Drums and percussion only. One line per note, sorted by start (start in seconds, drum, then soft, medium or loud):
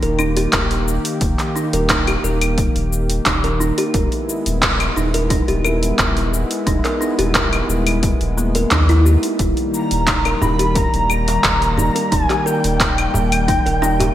0.03 open hi-hat soft
0.03 cabasa soft
0.19 cabasa medium
0.19 claves medium
0.37 open hi-hat soft
0.37 cabasa soft
0.53 kick loud
0.53 clap loud
0.53 open hi-hat medium
0.53 cabasa soft
0.71 open hi-hat soft
0.71 cabasa soft
0.88 cabasa medium
1.05 open hi-hat soft
1.05 cabasa soft
1.21 kick loud
1.21 open hi-hat medium
1.21 cabasa soft
1.39 clap soft
1.39 open hi-hat soft
1.39 cabasa soft
1.56 cabasa medium
1.73 open hi-hat soft
1.73 cabasa soft
1.89 kick loud
1.89 clap loud
1.89 open hi-hat medium
1.89 cabasa soft
2.07 open hi-hat soft
2.07 cabasa soft
2.07 claves medium
2.24 cabasa medium
2.41 open hi-hat soft
2.41 cabasa soft
2.41 claves medium
2.58 kick loud
2.58 open hi-hat medium
2.58 cabasa soft
2.76 open hi-hat soft
2.76 cabasa soft
2.93 cabasa medium
3.10 open hi-hat soft
3.10 cabasa soft
3.26 kick loud
3.26 clap loud
3.26 open hi-hat medium
3.26 cabasa soft
3.44 open hi-hat soft
3.44 cabasa soft
3.61 cabasa medium
3.78 open hi-hat soft
3.78 cabasa soft
3.94 kick loud
3.94 open hi-hat medium
3.94 cabasa soft
4.12 open hi-hat soft
4.12 cabasa soft
4.29 cabasa medium
4.46 open hi-hat soft
4.46 cabasa soft
4.62 kick loud
4.62 clap loud
4.62 open hi-hat medium
4.62 cabasa soft
4.80 open hi-hat soft
4.80 cabasa soft
4.80 claves medium
4.97 cabasa medium
5.14 open hi-hat soft
5.14 cabasa soft
5.30 kick loud
5.30 open hi-hat medium
5.30 cabasa soft
5.48 open hi-hat soft
5.48 cabasa soft
5.65 cabasa medium
5.65 claves medium
5.83 open hi-hat soft
5.83 cabasa soft
5.99 kick loud
5.99 clap loud
5.99 open hi-hat medium
5.99 cabasa soft
6.17 open hi-hat soft
6.17 cabasa soft
6.34 cabasa medium
6.51 open hi-hat soft
6.51 cabasa soft
6.67 kick loud
6.67 open hi-hat medium
6.67 cabasa soft
6.85 clap soft
6.85 open hi-hat soft
6.85 cabasa soft
7.02 cabasa medium
7.19 open hi-hat soft
7.19 cabasa soft
7.35 kick loud
7.35 clap loud
7.35 open hi-hat soft
7.35 cabasa soft
7.53 open hi-hat soft
7.53 cabasa soft
7.53 claves medium
7.70 cabasa medium
7.87 open hi-hat soft
7.87 cabasa soft
7.87 claves medium
8.03 kick loud
8.03 open hi-hat medium
8.03 cabasa soft
8.21 open hi-hat soft
8.21 cabasa soft
8.38 cabasa medium
8.55 open hi-hat soft
8.55 cabasa soft
8.71 kick loud
8.71 clap loud
8.71 open hi-hat medium
8.71 cabasa soft
8.89 open hi-hat soft
8.89 cabasa soft
9.06 cabasa medium
9.23 open hi-hat soft
9.23 cabasa soft
9.39 kick loud
9.39 open hi-hat medium
9.39 cabasa soft
9.57 open hi-hat soft
9.57 cabasa soft
9.73 darbuka ka soft
9.73 cabasa medium
9.91 open hi-hat soft
9.91 cabasa soft
10.07 kick loud
10.07 clap medium
10.07 open hi-hat medium
10.07 cabasa soft
10.25 open hi-hat soft
10.25 cabasa soft
10.25 claves medium
10.42 darbuka tek medium
10.42 darbuka dum medium
10.42 cabasa medium
10.59 open hi-hat soft
10.59 cabasa soft
10.76 kick loud
10.76 open hi-hat medium
10.76 cabasa soft
10.94 open hi-hat soft
10.94 cabasa soft
11.10 cabasa medium
11.10 claves medium
11.28 open hi-hat soft
11.28 darbuka tek medium
11.28 cabasa soft
11.44 kick loud
11.44 clap loud
11.44 open hi-hat medium
11.44 cabasa soft
11.62 open hi-hat soft
11.62 darbuka tek soft
11.62 cabasa soft
11.77 darbuka ka soft
11.77 darbuka dum loud
11.77 cabasa medium
11.96 open hi-hat soft
11.96 cabasa soft
12.12 kick loud
12.12 open hi-hat medium
12.12 cabasa soft
12.30 clap soft
12.30 open hi-hat soft
12.30 cabasa soft
12.47 cabasa medium
12.64 open hi-hat soft
12.64 cabasa soft
12.80 kick loud
12.80 clap loud
12.80 open hi-hat medium
12.80 cabasa soft
12.98 open hi-hat soft
12.98 darbuka ka soft
12.98 cabasa soft
12.98 claves medium
13.14 darbuka tek medium
13.14 darbuka dum medium
13.14 cabasa medium
13.32 open hi-hat soft
13.32 cabasa soft
13.32 claves medium
13.48 kick loud
13.48 open hi-hat medium
13.48 darbuka tek medium
13.48 cabasa soft
13.67 open hi-hat soft
13.67 cabasa soft
13.82 darbuka tek medium
13.82 cabasa medium
14.00 open hi-hat soft
14.00 darbuka ka soft
14.00 darbuka tek medium
14.00 darbuka dum medium
14.00 cabasa soft